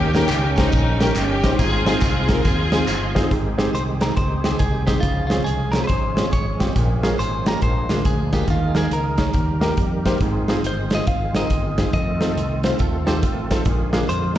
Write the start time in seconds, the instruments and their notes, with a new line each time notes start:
Already playing: fingered electric bass D#2, grand piano D#3, string section A#3 C#4 G4, tonewheel organ A#4 D#5 G5 C#6
0.14 string section A#3 C#4 G4, grand piano C#4 D#4 G4 A#4, snare, closed hi-hat, tambourine
0.29 fingered electric bass C#2, clap, closed hi-hat, tambourine
0.56 string section G3 A#3 D#4, grand piano C#4 D#4 G4 C5, kick, snare, closed hi-hat, tambourine
0.72 fingered electric bass A#1, kick, closed hi-hat, tambourine
1.00 grand piano C#4 D#4 G4 A#4, string section G4, snare, closed hi-hat, tambourine
1.15 fingered electric bass G1, string section A#3 C#4 G4, clap, closed hi-hat, tambourine
1.44 grand piano C#4 D#4 G4 C5, kick, snare, closed hi-hat, tambourine
1.52 grand piano C#4 D#4 G4 C5
1.59 fingered electric bass G#1, grand piano G#2, string section C4 F4 G#4, tonewheel organ G#4 F5 C6, kick, closed hi-hat, tambourine
1.86 grand piano C4 D#4 F4 G#4, string section G#4, snare, closed hi-hat, tambourine
2.01 fingered electric bass C2, string section G#4, kick, clap, closed hi-hat, tambourine
2.28 grand piano C4 D#4 F4 G#4, string section A#4, kick, snare, closed hi-hat, tambourine
2.45 fingered electric bass D#2, string section C4 F4 G#4, kick, closed hi-hat, tambourine
2.72 grand piano C4 D#4 F4 G#4, snare, closed hi-hat, tambourine
2.87 fingered electric bass G1, clap, closed hi-hat, tambourine
3.15 grand piano C4 D#4 F4 G#4, kick, snare, closed hi-hat, tambourine
3.23 grand piano C4 D#4 F4 G#4
3.30 fingered electric bass G#1, grand piano G#2, tonewheel organ D#3 G#3 C4 G4 G#4, kick, closed hi-hat
3.58 grand piano C4 D#4 G4 G#4, snare, closed hi-hat
3.74 fingered electric bass C2, clean electric guitar C5, closed hi-hat
4.01 grand piano C4 D#4 G4 G#4, clean electric guitar A#4, snare, closed hi-hat
4.17 fingered electric bass C#2, clean electric guitar C5, kick, closed hi-hat
4.44 grand piano C4 D#4 G4 G#4, snare, closed hi-hat
4.59 fingered electric bass C2, clean electric guitar G#4, kick, closed hi-hat
4.87 grand piano C4 D#4 G4 G#4, clean electric guitar G4, kick, snare, closed hi-hat
5.00 fingered electric bass C#2, grand piano C#3, tonewheel organ F3 C#4 G#4, clean electric guitar F4, kick, closed hi-hat
5.27 grand piano C4 C#4 G#4, clean electric guitar F4, snare, closed hi-hat
5.31 grand piano F4
5.44 fingered electric bass C2, clean electric guitar G#4, closed hi-hat
5.72 grand piano C4 C#4 F4 G#4, clean electric guitar A#4, snare, closed hi-hat
5.84 clean electric guitar B4 C5
5.89 fingered electric bass G#1, kick, closed hi-hat
6.17 grand piano C4 C#4 F4 G#4, snare, closed hi-hat
6.33 fingered electric bass G#1, clean electric guitar C#5, kick, closed hi-hat
6.60 grand piano C4 C#4 F4 G4, kick, snare, closed hi-hat
6.76 fingered electric bass A#1, grand piano A#2, tonewheel organ F3 A#3, kick, closed hi-hat
7.03 grand piano A#3 C#4 F4 G#4, snare, closed hi-hat
7.18 fingered electric bass G#1, clean electric guitar C5, closed hi-hat
7.46 grand piano A#3 C#4 F4 G4, clean electric guitar A#4, snare, closed hi-hat
7.62 fingered electric bass A#1, grand piano A#2, tonewheel organ D4, clean electric guitar C5, kick, closed hi-hat
7.89 fingered electric bass D2, grand piano A#3 D4 F4 G#4, snare, closed hi-hat
8.05 fingered electric bass D2, clean electric guitar G#4, kick, closed hi-hat
8.33 grand piano A#3 D4 F4 G#4, clean electric guitar G4, kick, snare, closed hi-hat
8.48 fingered electric bass D#2, grand piano D#3, tonewheel organ D#3 G#3 A#4, clean electric guitar F4, kick, closed hi-hat
8.75 grand piano A#3 D#4 G#4 A#4, clean electric guitar G#4, snare, closed hi-hat
8.91 fingered electric bass C#2, clean electric guitar A#4, closed hi-hat
9.17 grand piano A#3 D#4 G#4 C#5, kick, snare, closed hi-hat
9.33 fingered electric bass D#2, grand piano D#3, tonewheel organ G3 G4, kick, closed hi-hat
9.61 grand piano A#3 D#4 G4 A#4, snare, closed hi-hat
9.77 fingered electric bass F2, kick, closed hi-hat
10.05 grand piano A#3 D#4 G4 C5, kick, snare, closed hi-hat
10.20 fingered electric bass G#1, grand piano G#2, tonewheel organ D#3 G#3 C4 F4 G#4, kick, closed hi-hat
10.48 grand piano C4 D#4 F4 G#4, snare, closed hi-hat
10.63 fingered electric bass G1, clean electric guitar C5, closed hi-hat
10.90 grand piano C4 D#4 F4 G#4, snare, closed hi-hat
10.95 clean electric guitar D#5
11.07 fingered electric bass G#1, clean electric guitar F5, kick, closed hi-hat
11.35 grand piano C4 D#4 F4 A#4, clean electric guitar D#5, snare, closed hi-hat
11.50 fingered electric bass G1, kick, closed hi-hat
11.78 grand piano C4 D#4 F4 G#4, kick, snare, closed hi-hat
11.93 fingered electric bass F2, tonewheel organ A3 A4, clean electric guitar D#5, kick, closed hi-hat
12.21 grand piano C4 D#4 F4 A4, snare, closed hi-hat
12.36 fingered electric bass C2, closed hi-hat
12.63 grand piano C4 D#4 F4 C5, snare, closed hi-hat
12.79 fingered electric bass D#2, clean electric guitar F4 A4, kick, closed hi-hat
13.07 grand piano C4 D#4 F4 G4, clean electric guitar A4 C5, snare, closed hi-hat
13.23 fingered electric bass A1, clean electric guitar F4, kick, closed hi-hat
13.51 grand piano C4 D#4 F4 A4, kick, snare, closed hi-hat
13.65 fingered electric bass A#1, grand piano A#2, tonewheel organ D3 G#3 A#3 G#4, kick, closed hi-hat
13.93 grand piano A#3 D4 F4 G#4, snare, closed hi-hat
14.09 fingered electric bass F2, clean electric guitar C5, closed hi-hat